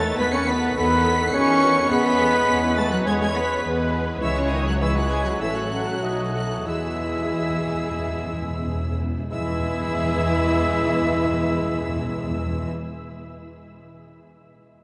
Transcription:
Already playing: double bass section E2, timpani E2, bassoon D#3, french horn section A3, cello section A3, clarinet A4, oboe B4, viola section C#5, flute A5, violin section A6
0.04 violin section D#4 A4
0.16 double bass section E2, french horn section B3, cello section B3, violin section F#4 B4 B6, clarinet B4, viola section B4, flute B5
0.32 french horn section C#4, cello section C#4, violin section D#4 A4 C#7, clarinet C#5, flute C#6
0.46 french horn section B3, cello section B3, violin section F#4 B4 B6, clarinet B4, flute B5
0.63 violin section D#4 A4
0.76 double bass section E2, bassoon D#3, french horn section B3, cello section B3, violin section F#4 B4 B6, viola section A4, clarinet B4, oboe B4, flute B5
0.92 violin section D#4 A4
1.06 violin section F#4 B4
1.20 violin section D#4 A4
1.33 double bass section E2, french horn section C#4, cello section C#4, violin section F#4 B4 C#7, viola section G#4, clarinet C#5, flute C#6
1.50 violin section D#4 A4
1.63 violin section F#4 B4, viola section F#4
1.78 violin section D#4 A4
1.90 double bass section E2, bassoon G#3, french horn section B3, cello section B3, violin section B3 G#4 B6, viola section G#4, clarinet B4, oboe B4, flute B5
2.06 violin section E4 B4
2.20 violin section B3 G#4, viola section A4
2.34 violin section E4 B4
2.48 double bass section E2, violin section B3 G#4, viola section B4
2.63 violin section E4 B4
2.77 french horn section A3, cello section A3, violin section B3 G#4 A6, clarinet A4, flute A5
2.91 french horn section F#3, cello section F#3, violin section E4 B4 F#6, clarinet F#4, flute F#5
3.05 double bass section E2, french horn section G#3, bassoon G#3, cello section G#3, violin section B3 G#4 G#6, clarinet G#4, oboe B4, viola section C#5, flute G#5
3.18 french horn section G#3, cello section G#3, clarinet G#4, flute G#5, violin section G#6
3.22 violin section E4 B4
3.34 french horn section B3, cello section B3, violin section B3 G#4 B6, clarinet B4, flute B5
3.50 violin section E4 B4
3.64 double bass section E2, violin section B3 G#4, viola section B4
3.79 violin section E4 B4
3.95 violin section B3 G#4
4.09 violin section E4 B4
4.20 double bass section C#2, french horn section E3, cello section E3, bassoon G#3, clarinet E4, violin section E4 G#4 E6, oboe C#5, viola section C#5, flute E5
4.37 french horn section C#3, cello section C#3, clarinet C#4, flute C#5, violin section C#6
4.50 french horn section D#3, cello section D#3, clarinet D#4, flute D#5, violin section D#6
4.65 french horn section F#3, cello section F#3, clarinet F#4, flute F#5, violin section F#6
4.80 french horn section E3, cello section E3, bassoon G#3, clarinet E4, violin section E4 G#4 E6, viola section B4, oboe C#5, flute E5
4.93 french horn section F#3, cello section F#3, clarinet F#4, violin section F#6
4.98 flute F#5
5.09 french horn section G#3, cello section G#3, clarinet G#4, flute G#5, violin section G#6
5.25 cello section F#3, french horn section F#3, clarinet F#4, flute F#5, violin section F#6
5.40 double bass section A1, cello section E3, french horn section E3, bassoon A3, violin section C#4 A4 E6, clarinet E4, viola section A4, oboe C#5, flute E5
5.54 cello section F#3, french horn section F#3, clarinet F#4, flute F#5, violin section F#6
6.01 double bass section B1, bassoon A3, violin section D#4 A4, viola section F#4, oboe D#5
6.32 cello section F#3, french horn section F#3, clarinet F#4, flute F#5, violin section F#6
6.65 timpani E2, double bass section E2, french horn section E3, cello section E3, bassoon G#3, clarinet E4, violin section E4 G#4 E6, viola section G#4, oboe E5, flute E5
6.83 timpani E2
7.00 timpani E2
7.08 timpani E2
7.16 timpani E2
7.25 timpani E2
7.33 timpani E2
7.41 timpani E2
7.50 timpani E2
7.58 timpani E2
7.66 timpani E2
7.75 timpani E2
7.82 timpani E2
7.91 timpani E2
7.99 timpani E2
8.07 timpani E2
8.16 timpani E2
8.24 timpani E2
8.33 timpani E2
8.41 timpani E2
8.50 timpani E2
8.58 timpani E2
8.67 timpani E2
8.75 timpani E2
8.84 timpani E2
8.92 timpani E2
9.00 timpani E2
9.09 timpani E2
9.17 timpani E2
9.31 timpani E2, double bass section E2, cello section E3, viola section E3 E4, bassoon G#3, clarinet E4, french horn section E4, violin section G#4 B4 E6, oboe E5, flute E5
9.38 timpani E2
9.45 timpani E2
9.52 timpani E2
9.60 timpani E2
9.66 timpani E2
9.74 timpani E2
9.81 timpani E2
9.88 timpani E2
9.95 timpani E2
10.03 timpani E2
10.10 timpani E2
10.17 timpani E2
10.24 timpani E2
10.31 timpani E2
10.38 timpani E2
10.45 timpani E2
10.52 timpani E2
10.59 timpani E2
10.66 timpani E2
10.73 timpani E2
10.81 timpani E2
10.87 timpani E2
10.95 timpani E2
11.02 timpani E2
11.09 timpani E2
11.17 timpani E2
11.24 timpani E2
11.31 timpani E2
11.38 timpani E2
11.45 timpani E2
11.52 timpani E2
11.59 timpani E2
11.67 timpani E2
11.74 timpani E2
11.81 timpani E2
11.88 timpani E2
11.96 timpani E2
12.02 timpani E2
12.09 timpani E2
12.16 timpani E2
12.23 timpani E2
12.31 timpani E2
12.38 timpani E2
12.45 timpani E2
12.52 timpani E2
12.60 timpani E2
12.67 timpani E2

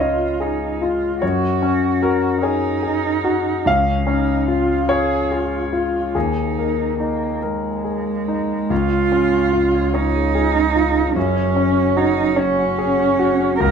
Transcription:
Already playing: grand piano C#2 C#4 F4 F5
0.00 cello F4, grand piano C#5 D#5
0.40 cello D#4, grand piano G#4
0.82 grand piano F4, cello F4
1.22 grand piano F#2 C#5, cello F#4
1.62 grand piano C#4
2.03 grand piano F#4 A#4
2.42 cello D#4, grand piano G#4 C#5
2.83 grand piano G#4
3.24 grand piano F#4
3.66 grand piano C#2 F5, cello C#4
4.07 grand piano C#4, cello D#4
4.48 grand piano F4, cello F4
4.89 cello G#4, grand piano C#5
5.31 cello F4, grand piano G#4
5.73 grand piano F4, cello F4
6.15 grand piano D#2 G#4, cello D#4
6.59 grand piano A#3
7.00 cello A#3, grand piano D#4
7.42 cello G#3, grand piano A#4
7.84 grand piano G#4
8.28 grand piano D#4
8.70 grand piano C#2, double bass C#2, harp C#4, cello F4
8.91 harp F4
9.12 grand piano C#4
9.33 harp C#4
9.53 grand piano F4, harp F4
9.74 harp C#5
9.94 harp C#4, cello D#4, grand piano C#5
10.15 harp G#4
10.35 harp F4, grand piano G#4
10.55 harp C#4
10.76 grand piano F4, harp G#4
11.15 double bass F#1, grand piano F#2, cello C#4, harp F#4
11.36 harp C#5
11.56 grand piano C#4
11.77 harp F#4
11.96 cello D#4, grand piano F#4, harp C#5
12.18 harp G#5
12.36 cello C#4, harp F#4, grand piano C#5
12.59 harp F#5
12.78 grand piano G#4, harp C#5
12.99 harp F#4
13.19 grand piano F#4, harp F#5
13.59 grand piano C#2, double bass C#2, harp C#4, cello A#4

